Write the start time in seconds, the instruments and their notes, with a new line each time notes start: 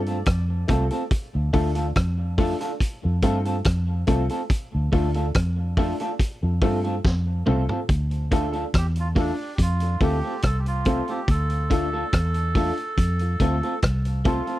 Already playing: fingered electric bass G2
0.06 clean electric guitar A3 C4 F4 A4, closed hi-hat
0.26 fingered electric bass F2, kick, cross-stick, closed hi-hat
0.68 fingered electric bass C2, upright piano A3 C4 F4 A4, clean electric guitar A3 C4 F4 A4, kick, closed hi-hat
0.91 clean electric guitar A3 C4 F4 A4, upright piano F4 A4, closed hi-hat
1.11 kick, closed hi-hat
1.35 fingered electric bass D2
1.53 fingered electric bass D2, upright piano A3 D4 F4 A4, clean electric guitar A3 D4 F4 A4, kick, open hi-hat
1.75 clean electric guitar A3 D4 F4 A4, closed hi-hat
1.96 fingered electric bass F2, kick, cross-stick, closed hi-hat
2.38 upright piano A3 D4 F4 A4, clean electric guitar A3 D4 F4 A4, kick, open hi-hat
2.61 clean electric guitar A3 D4 F4 A4, closed hi-hat
2.80 kick, closed hi-hat
3.03 fingered electric bass F2, upright piano F4 A4
3.22 fingered electric bass G2, upright piano A3 C4 F4 A4, clean electric guitar A3 C4 F4 A4, kick, closed hi-hat
3.45 clean electric guitar A3 C4 F4 A4, closed hi-hat
3.65 fingered electric bass F2, kick, cross-stick, closed hi-hat
4.07 fingered electric bass C2, upright piano A3 C4 F4 A4, clean electric guitar A3 C4 F4 A4, kick, closed hi-hat
4.29 clean electric guitar A3 C4 F4 A4, upright piano F4 A4, closed hi-hat
4.50 kick, closed hi-hat
4.75 fingered electric bass D2
4.92 fingered electric bass D2, clean electric guitar A3 D4 F4 A4, upright piano A3 D4 F4 A4, kick, open hi-hat
5.14 clean electric guitar A3 D4 F4 A4, closed hi-hat
5.34 fingered electric bass F2, kick, cross-stick, closed hi-hat
5.77 upright piano A3 D4 F4 A4, clean electric guitar A3 D4 F4 A4, kick, open hi-hat
6.00 clean electric guitar A3 D4 F4 A4, closed hi-hat
6.19 kick, closed hi-hat
6.42 fingered electric bass F2, upright piano F4 A4
6.62 fingered electric bass G2, upright piano A3 C4 F4 A4, clean electric guitar A3 C4 F4 A4, kick, open hi-hat
6.84 clean electric guitar A3 C4 F4 A4, closed hi-hat
7.05 fingered electric bass F2, kick, snare
7.46 fingered electric bass C2, clean electric guitar A3 C4 F4 A4, upright piano A3 C4 F4 A4, mid tom
7.69 clean electric guitar A3 C4 F4 A4, upright piano F4 A4, floor tom
7.89 fingered electric bass D2, kick, closed hi-hat
8.11 closed hi-hat
8.31 clean electric guitar A3 D4 F4 A4, upright piano A3 D4 F4 A4, kick, closed hi-hat
8.53 clean electric guitar A3 D4 F4 A4, closed hi-hat
8.74 fingered electric bass E2, melodica G4, kick, cross-stick, closed hi-hat
8.96 closed hi-hat
9.00 melodica F4
9.15 clean electric guitar A3 D4 F4 A4, upright piano A3 D4 F4 A4, kick, open hi-hat
9.20 melodica D4
9.55 melodica G4, kick, closed hi-hat
9.59 fingered electric bass F2, melodica F4
9.80 upright piano F4 A4, closed hi-hat
10.01 fingered electric bass D2, upright piano A3 C4 F4 A4, clean electric guitar A3 C4 F4 A4, melodica G4, kick, open hi-hat
10.23 clean electric guitar A3 C4 F4 A4
10.42 fingered electric bass C2, melodica A4, kick, cross-stick, closed hi-hat
10.59 melodica G4
10.66 melodica F4, closed hi-hat
10.85 upright piano A3 C4 F4 A4, clean electric guitar A3 C4 F4 A4, kick, closed hi-hat
11.08 clean electric guitar A3 C4 F4 A4, upright piano F4 A4, melodica G4, closed hi-hat
11.28 fingered electric bass D2, melodica A4, kick, closed hi-hat
11.50 closed hi-hat
11.70 clean electric guitar A3 D4 F4 A4, upright piano A3 D4 F4 A4, melodica A4, kick, closed hi-hat
11.93 clean electric guitar A3 D4 F4 A4
12.13 fingered electric bass E2, kick, cross-stick, closed hi-hat
12.34 closed hi-hat
12.55 upright piano A3 D4 F4 A4, clean electric guitar A3 D4 F4 A4, kick, open hi-hat
12.77 closed hi-hat
12.98 fingered electric bass F2, kick, closed hi-hat
13.19 upright piano F4 A4, closed hi-hat
13.40 fingered electric bass D2, upright piano A3 C4 F4 A4, clean electric guitar A3 C4 F4 A4, kick, closed hi-hat
13.63 clean electric guitar A3 C4 F4 A4, closed hi-hat
13.82 fingered electric bass C2, kick, cross-stick, closed hi-hat
14.05 closed hi-hat
14.25 clean electric guitar A3 C4 F4 A4, upright piano A3 C4 F4 A4, melodica F4, kick, closed hi-hat
14.46 clean electric guitar A3 C4 F4 A4, upright piano F4 A4, closed hi-hat